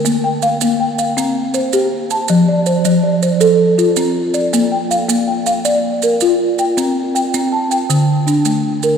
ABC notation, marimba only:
X:1
M:12/8
L:1/8
Q:3/8=107
K:Bb
V:1 name="Marimba"
B g f2 g f2 z c3 a- | a d c2 d c3 F3 d- | d g f2 g f3 B3 g- | g z g2 a g2 z D3 B |]
V:2 name="Marimba"
B,2 z B,2 z C2 z G2 z | F,2 z F,2 z A2 z C2 z | B,2 z B,2 z d2 z F2 z | C2 z C2 z D,2 z A,2 z |]